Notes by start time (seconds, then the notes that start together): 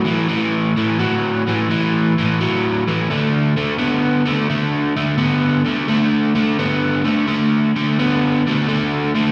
0.04 A2 E3
0.28 A2 E3
0.77 A2 E3
0.99 A2 F#3
1.47 A2 E3
1.70 A2 E3
2.19 A2 E3
2.40 A2 F#3
2.87 A2 E3
3.10 D3 A3
3.57 D3 A3
3.79 D3 B3
4.26 D3 A3
4.50 D3 A3
4.96 D3 A3
5.18 D3 B3
5.66 D3 A3
5.89 D3 A3
6.35 D3 A3
6.59 D3 B3
7.04 D3 A3
7.28 D3 A3
7.76 D3 A3
7.99 D3 B3
8.47 D3 A3
8.68 D3 A3
9.15 D3 A3